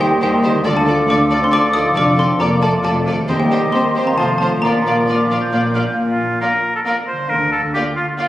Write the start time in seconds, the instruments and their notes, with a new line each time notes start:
Already playing: cello section D#2, double bass section D#2, harp D#3 G3 C4 D#4 C5, bassoon D#3, clarinet G4, oboe D#5, flute C6
0.01 french horn section G3, viola section D#4, xylophone G5
0.20 cello section D#2, double bass section D#2, french horn section G3, viola section D#4, violin section G4 C5, xylophone G5
0.44 harp D3, viola section D#4, violin section G4 C5
0.51 harp A3
0.56 harp F4
0.60 harp D5
0.64 double bass section D2, cello section D2, bassoon F3, viola section F4, violin section A4 D5, clarinet A4, oboe D5, flute D6
0.76 french horn section A3, xylophone A5
0.86 viola section F4, violin section A4 D5
1.09 double bass section D2, cello section D2, french horn section D4, viola section F4, violin section A4 D5, xylophone D6
1.30 viola section F4, violin section A4 D5
1.41 french horn section C4, xylophone C6
1.52 double bass section D2, cello section D2, french horn section D4, viola section F4, violin section A4 D5, xylophone D6
1.73 french horn section D#4, viola section F4, violin section A4 D5, xylophone D#6
1.78 harp F3
1.83 harp A3
1.87 harp F4
1.92 violin section A4 D5, harp D5
1.96 double bass section F1, cello section F2, french horn section D4, viola section F4, xylophone D6
2.16 french horn section C4, viola section F4, violin section A4 D5, xylophone C6
2.40 double bass section F1, cello section F2, french horn section A#3, viola section F4, violin section A4 D5, xylophone A#5
2.60 french horn section A3, viola section F4, violin section A4 D5, xylophone A5
2.83 double bass section F1, cello section F2, french horn section A3, viola section F4, violin section A4 D5, xylophone A5
3.06 viola section F4, violin section A4 D5
3.11 harp D#3
3.15 harp C4
3.20 harp G4
3.25 cello section D#2, harp C5, violin section C5, flute C6
3.29 double bass section D#2, bassoon D#3, viola section C4, clarinet G4, violin section G4, oboe D#5
3.40 french horn section G3, xylophone G5
3.51 viola section C4, violin section G4 C5
3.72 double bass section D#2, cello section D#2, viola section C4, french horn section C4, violin section G4 C5, xylophone C6
3.94 viola section C4, violin section G4 C5
4.00 harp F3
4.04 french horn section A#3, harp C4, xylophone A#5
4.09 harp F4
4.13 double bass section F1, clarinet F4, harp C5, oboe C5
4.18 cello section F2, bassoon F3, french horn section A3, viola section C4, violin section F4 C5, xylophone A5
4.38 french horn section A3, viola section C4, violin section F4, xylophone A5
4.42 harp A#2, violin section C5
4.50 harp D4
4.54 harp F4
4.62 double bass section A#1, cello section A#2, viola section A#3, french horn section A#3, violin section F4 D5, oboe D5, xylophone A#5, flute A#5
4.83 viola section A#3, violin section D5
4.87 violin section F4
5.07 double bass section A#1, cello section A#2, viola section A#3, violin section F4 D5, flute D6
5.29 viola section A#3, violin section F4 D5
5.41 flute G6
5.52 double bass section A#1, cello section A#2, viola section A#3, violin section F4 D5
5.75 viola section A#3, violin section F4 D5, flute F6
5.80 harp A#2
5.84 harp D4, flute G6
5.89 harp F4
5.93 cello section A#2, harp A#4
5.97 double bass section A#1
6.08 oboe F4
6.41 viola section A#3, violin section F4 D5, oboe A#4
6.75 oboe A4
6.85 viola section A#3, violin section F4 D5, oboe A#4
7.07 oboe C5
7.12 harp D3
7.16 harp D4
7.21 harp F4
7.25 cello section D3, harp A#4, oboe A#4
7.30 double bass section D2
7.52 oboe A4
7.74 viola section A#3, violin section F4 D5, oboe G4
7.96 oboe F4
8.18 viola section A#3, oboe F4, violin section F4 D5